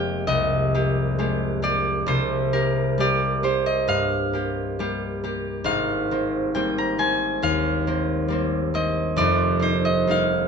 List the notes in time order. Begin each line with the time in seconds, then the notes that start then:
Already playing: F1 F2 G#3 A#3 C4 G4 D#5 F5 G5
0.27 C2 D#5
0.74 A#3 G4
1.18 G#3 A#3 G4
1.62 A#3 G4 D5
2.06 C2 C3 C5
2.53 A#3 G4 A#4
2.98 G3 A#3 G4 D5
3.43 A#3 G4 C5
3.66 D#5
3.88 G2 F5
4.33 A#3 G4
4.79 G3 A#3 G4
5.24 A#3 G4
5.64 G#1 G#2 F5
6.11 A#3 C4
6.55 G3 A#3 C4 G5
6.78 A#5
6.98 A#3 C4 G#5
7.42 D#2 F5
7.87 A#3 C4
8.28 G3 A#3 C4
8.74 A#3 C4 D#5
9.16 F1 F2 D5
9.59 A#3 D#4 C5
9.85 D#5
10.07 G3 A#3 D#4 F5